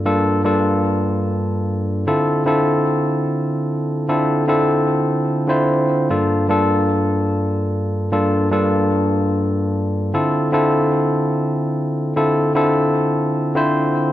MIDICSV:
0, 0, Header, 1, 2, 480
1, 0, Start_track
1, 0, Tempo, 500000
1, 13560, End_track
2, 0, Start_track
2, 0, Title_t, "Tine electric piano"
2, 0, Program_c, 0, 4
2, 49, Note_on_c, 0, 43, 77
2, 53, Note_on_c, 0, 58, 72
2, 54, Note_on_c, 0, 62, 70
2, 56, Note_on_c, 0, 65, 71
2, 59, Note_on_c, 0, 69, 86
2, 394, Note_off_c, 0, 43, 0
2, 396, Note_off_c, 0, 58, 0
2, 397, Note_off_c, 0, 62, 0
2, 398, Note_off_c, 0, 65, 0
2, 399, Note_off_c, 0, 69, 0
2, 419, Note_on_c, 0, 43, 83
2, 426, Note_on_c, 0, 58, 75
2, 429, Note_on_c, 0, 62, 73
2, 434, Note_on_c, 0, 65, 74
2, 439, Note_on_c, 0, 69, 87
2, 1960, Note_off_c, 0, 43, 0
2, 1963, Note_off_c, 0, 58, 0
2, 1965, Note_off_c, 0, 62, 0
2, 1967, Note_off_c, 0, 65, 0
2, 1970, Note_off_c, 0, 69, 0
2, 1985, Note_on_c, 0, 50, 80
2, 1988, Note_on_c, 0, 60, 70
2, 1991, Note_on_c, 0, 64, 71
2, 1994, Note_on_c, 0, 65, 74
2, 1994, Note_on_c, 0, 69, 86
2, 2330, Note_off_c, 0, 50, 0
2, 2332, Note_off_c, 0, 60, 0
2, 2333, Note_off_c, 0, 64, 0
2, 2335, Note_off_c, 0, 65, 0
2, 2335, Note_off_c, 0, 69, 0
2, 2355, Note_on_c, 0, 50, 82
2, 2361, Note_on_c, 0, 60, 72
2, 2364, Note_on_c, 0, 64, 73
2, 2372, Note_on_c, 0, 65, 78
2, 2377, Note_on_c, 0, 69, 89
2, 3896, Note_off_c, 0, 50, 0
2, 3899, Note_off_c, 0, 60, 0
2, 3900, Note_off_c, 0, 64, 0
2, 3904, Note_off_c, 0, 65, 0
2, 3907, Note_off_c, 0, 69, 0
2, 3921, Note_on_c, 0, 50, 79
2, 3924, Note_on_c, 0, 60, 72
2, 3926, Note_on_c, 0, 64, 71
2, 3929, Note_on_c, 0, 65, 73
2, 3930, Note_on_c, 0, 69, 84
2, 4266, Note_off_c, 0, 50, 0
2, 4268, Note_off_c, 0, 60, 0
2, 4269, Note_off_c, 0, 64, 0
2, 4271, Note_off_c, 0, 65, 0
2, 4271, Note_off_c, 0, 69, 0
2, 4293, Note_on_c, 0, 50, 78
2, 4296, Note_on_c, 0, 60, 73
2, 4303, Note_on_c, 0, 64, 73
2, 4307, Note_on_c, 0, 65, 74
2, 4312, Note_on_c, 0, 69, 93
2, 5239, Note_off_c, 0, 50, 0
2, 5240, Note_off_c, 0, 60, 0
2, 5244, Note_off_c, 0, 64, 0
2, 5246, Note_off_c, 0, 65, 0
2, 5248, Note_off_c, 0, 69, 0
2, 5257, Note_on_c, 0, 50, 79
2, 5266, Note_on_c, 0, 60, 72
2, 5270, Note_on_c, 0, 64, 75
2, 5274, Note_on_c, 0, 65, 76
2, 5278, Note_on_c, 0, 72, 84
2, 5831, Note_off_c, 0, 50, 0
2, 5835, Note_off_c, 0, 60, 0
2, 5837, Note_off_c, 0, 64, 0
2, 5839, Note_off_c, 0, 65, 0
2, 5841, Note_off_c, 0, 72, 0
2, 5856, Note_on_c, 0, 43, 77
2, 5857, Note_on_c, 0, 58, 70
2, 5858, Note_on_c, 0, 62, 72
2, 5861, Note_on_c, 0, 65, 74
2, 5864, Note_on_c, 0, 69, 81
2, 6202, Note_off_c, 0, 43, 0
2, 6203, Note_off_c, 0, 58, 0
2, 6203, Note_off_c, 0, 62, 0
2, 6204, Note_off_c, 0, 65, 0
2, 6206, Note_off_c, 0, 69, 0
2, 6224, Note_on_c, 0, 43, 77
2, 6229, Note_on_c, 0, 58, 74
2, 6234, Note_on_c, 0, 62, 74
2, 6239, Note_on_c, 0, 65, 74
2, 6245, Note_on_c, 0, 69, 90
2, 7766, Note_off_c, 0, 43, 0
2, 7769, Note_off_c, 0, 58, 0
2, 7771, Note_off_c, 0, 62, 0
2, 7774, Note_off_c, 0, 65, 0
2, 7777, Note_off_c, 0, 69, 0
2, 7793, Note_on_c, 0, 43, 80
2, 7796, Note_on_c, 0, 58, 71
2, 7799, Note_on_c, 0, 62, 70
2, 7801, Note_on_c, 0, 65, 72
2, 7804, Note_on_c, 0, 69, 83
2, 8138, Note_off_c, 0, 43, 0
2, 8140, Note_off_c, 0, 58, 0
2, 8142, Note_off_c, 0, 62, 0
2, 8143, Note_off_c, 0, 65, 0
2, 8144, Note_off_c, 0, 69, 0
2, 8165, Note_on_c, 0, 43, 83
2, 8172, Note_on_c, 0, 58, 75
2, 8176, Note_on_c, 0, 62, 75
2, 8180, Note_on_c, 0, 65, 74
2, 8186, Note_on_c, 0, 69, 89
2, 9705, Note_off_c, 0, 43, 0
2, 9709, Note_off_c, 0, 58, 0
2, 9710, Note_off_c, 0, 62, 0
2, 9712, Note_off_c, 0, 65, 0
2, 9715, Note_off_c, 0, 69, 0
2, 9731, Note_on_c, 0, 50, 76
2, 9732, Note_on_c, 0, 60, 70
2, 9736, Note_on_c, 0, 64, 73
2, 9739, Note_on_c, 0, 65, 75
2, 9739, Note_on_c, 0, 69, 85
2, 10076, Note_off_c, 0, 50, 0
2, 10076, Note_off_c, 0, 60, 0
2, 10078, Note_off_c, 0, 64, 0
2, 10079, Note_off_c, 0, 65, 0
2, 10080, Note_off_c, 0, 69, 0
2, 10100, Note_on_c, 0, 50, 84
2, 10102, Note_on_c, 0, 60, 77
2, 10110, Note_on_c, 0, 64, 77
2, 10115, Note_on_c, 0, 65, 76
2, 10119, Note_on_c, 0, 69, 90
2, 11640, Note_off_c, 0, 50, 0
2, 11642, Note_off_c, 0, 60, 0
2, 11645, Note_off_c, 0, 64, 0
2, 11648, Note_off_c, 0, 65, 0
2, 11650, Note_off_c, 0, 69, 0
2, 11675, Note_on_c, 0, 50, 78
2, 11675, Note_on_c, 0, 60, 73
2, 11678, Note_on_c, 0, 64, 73
2, 11681, Note_on_c, 0, 65, 73
2, 11683, Note_on_c, 0, 69, 89
2, 12016, Note_off_c, 0, 50, 0
2, 12016, Note_off_c, 0, 60, 0
2, 12017, Note_off_c, 0, 64, 0
2, 12019, Note_off_c, 0, 65, 0
2, 12019, Note_off_c, 0, 69, 0
2, 12044, Note_on_c, 0, 50, 82
2, 12047, Note_on_c, 0, 60, 76
2, 12052, Note_on_c, 0, 64, 78
2, 12056, Note_on_c, 0, 65, 75
2, 12063, Note_on_c, 0, 69, 92
2, 12987, Note_off_c, 0, 50, 0
2, 12988, Note_off_c, 0, 60, 0
2, 12990, Note_off_c, 0, 64, 0
2, 12993, Note_off_c, 0, 65, 0
2, 12996, Note_off_c, 0, 69, 0
2, 13008, Note_on_c, 0, 50, 79
2, 13011, Note_on_c, 0, 60, 76
2, 13017, Note_on_c, 0, 64, 80
2, 13022, Note_on_c, 0, 65, 75
2, 13028, Note_on_c, 0, 72, 95
2, 13560, Note_off_c, 0, 50, 0
2, 13560, Note_off_c, 0, 60, 0
2, 13560, Note_off_c, 0, 64, 0
2, 13560, Note_off_c, 0, 65, 0
2, 13560, Note_off_c, 0, 72, 0
2, 13560, End_track
0, 0, End_of_file